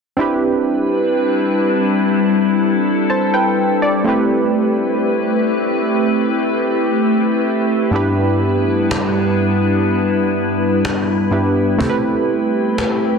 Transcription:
0.17 G3 C4 D4 E4 G4 B4
0.21 B4
2.13 A4
3.10 C5 A5
3.34 B4 G5
3.82 D5
4.04 A3 C4 E4 G4 B4
4.09 B4
7.91 G2 G3 B3 D4 E4 G4 B4
7.96 B4
8.91 cajon slap
10.85 cajon slap
11.31 G2 B3 D4 E4 G4 B4
11.78 A3 C4 E4 G4, cajon bass
11.83 A4
11.89 B4
12.78 cajon slap

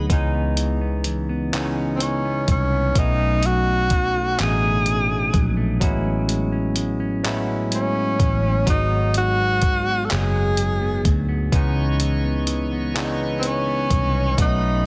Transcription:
Already playing: F#3 G#3 A3 B3 D#4 G#4 B4
0.09 C#2 C#3 E3 G#3 B3 C#4 D#4, kick, closed hi-hat
0.35 B3
0.57 E3, closed hi-hat
0.81 B3
1.04 E3, closed hi-hat
1.29 B3
1.53 C#3 E3 G#3 B3 C#4 D#4, clap, closed hi-hat
1.78 B3
1.96 C4
2.00 E3 C#4, closed hi-hat
2.25 B3
2.48 C2 E3 C#4, kick, closed hi-hat
2.72 B3
2.95 B1 B2 F#3 A3 B3 C#4 D#4, kick, closed hi-hat
3.20 A3
3.43 F#3 F#4, closed hi-hat
3.67 A3
3.90 F#3, kick, closed hi-hat
4.15 A3
4.38 A1 B2 F#3 A3 B3 C#4 D4 D#4, clap, closed hi-hat
4.42 G#4
4.48 D#4
4.63 A3
4.86 F#3, closed hi-hat
5.10 A3
5.33 A#1 F#3, kick, closed hi-hat
5.57 A3
5.80 A1 A2 F#3 G#3 B3 C#4 E4 F#4, kick, closed hi-hat
6.04 C#4
6.28 G#3, closed hi-hat
6.52 C#4
6.76 G#3, closed hi-hat
7.00 C#4
7.23 A2 F#3 G#3 B3 C#4 E4 F#4, clap, closed hi-hat
7.47 C#4
7.71 G#3, closed hi-hat
7.75 C#4
7.95 C#4
8.19 A1 G#3, kick, closed hi-hat
8.43 C#4
8.66 G#1 G#2 F#3 G#3 B3 D#4 F#4, kick, closed hi-hat
8.91 B3
9.14 F#3 F#4, closed hi-hat
9.39 B3
9.62 F#3, kick, closed hi-hat
9.87 B3
10.05 A4
10.09 F#1 G#2 F#3 G#3 B3 D#4 G#4, clap, closed hi-hat
10.34 B3
10.57 F#3, closed hi-hat
10.82 B3
11.05 D2 F#3, kick, closed hi-hat
11.29 B3
11.52 C#2 C#3 E3 G#3 B3 C#4 D#4 B4 C#5 D#5 C#6, kick, closed hi-hat
11.76 B3
12.00 E3, closed hi-hat
12.24 B3
12.47 E3, closed hi-hat
12.72 B3
12.94 C#3 E3 G#3 B3 C#4 D4 D#4, clap, closed hi-hat
13.05 D#4
13.19 B3
13.39 C4
13.43 E3, closed hi-hat
13.47 C#4
13.66 B3
13.90 C2 E3, kick, closed hi-hat
14.14 B3
14.37 B1 B2 F#3 A3 B3 C#4 D#4 F#5 B5, kick, closed hi-hat
14.41 D#4
14.62 A3

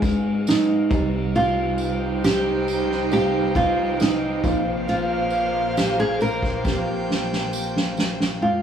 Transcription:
Already playing: G#2 G#3 C4 D#4 G#4
0.02 kick, ride, tambourine
0.25 ride
0.47 D#4, snare, ride, tambourine
0.90 C2 C3 G3 C4 D#4 G4, kick, ride, tambourine
1.13 ride
1.34 C3 G3 D#4 F4 C5 G5, ride, tambourine
1.78 ride, tambourine
2.23 G4, snare, ride, tambourine
2.67 ride, tambourine
2.91 snare
3.11 G3 C4 D#4 F4 G4, ride, tambourine
3.55 F4, kick, ride, tambourine
3.78 ride
4.00 D#4, snare, ride, tambourine
4.43 A#1 A#2 F3 A#3 C4 F4 C5 F5, kick, ride, tambourine
4.66 ride
4.88 F4, ride, tambourine
5.31 ride, tambourine
5.76 G4, snare, ride, tambourine
6.00 G#4
6.19 A#4 G5, ride, tambourine
6.42 kick, snare
6.64 F3 A#3 C4 G4, kick, snare, tambourine
7.11 snare
7.32 snare
7.53 tambourine
7.76 snare
7.97 snare, tambourine
8.20 snare
8.41 F2 G#3 F4 G5

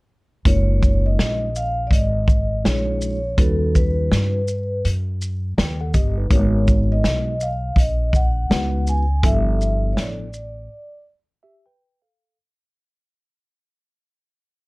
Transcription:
0.45 F#1 G#3 C#4 D#4 F4 A#4 C#5, kick, closed hi-hat
0.83 kick, shaker
1.06 D#5
1.19 A#1, snare, closed hi-hat
1.56 F5, shaker
1.87 G#1 D5, kick
1.93 D#5, closed hi-hat
2.28 kick, shaker
2.64 A#1 G#3 C#4 D#4 F4 G#4 C#5, snare, closed hi-hat
3.02 shaker
3.37 D#2 G3 C#4 D#4 F#4 A4 B4, kick, closed hi-hat
3.75 B4, kick, shaker
4.11 G2, snare, closed hi-hat
4.48 shaker
4.85 F#2, closed hi-hat
5.22 shaker
5.58 D#2 B4 G5, snare, closed hi-hat
5.81 A4 F#5
5.94 G1 G4 D#5, kick, closed hi-hat, shaker
6.17 D#4 B4
6.30 G#1 G#3 B3 D#4 F#4 A#4 C#5, kick, closed hi-hat
6.68 kick, shaker
6.92 D#5
7.04 B1, snare, closed hi-hat
7.41 F5, shaker
7.76 A#1 D#5, kick, closed hi-hat
8.13 F#5, kick, shaker
8.50 C#2 G#3 B3 D#4 F#4 B4, snare, closed hi-hat
8.87 G#5, shaker
9.23 G1 F3 B3 D4 E4 A4 E5, kick, closed hi-hat
9.61 shaker
9.92 C#5
9.97 A1 D5, snare, closed hi-hat
10.33 shaker
11.43 G4 E5
11.66 B4 G5
12.02 A4 F5

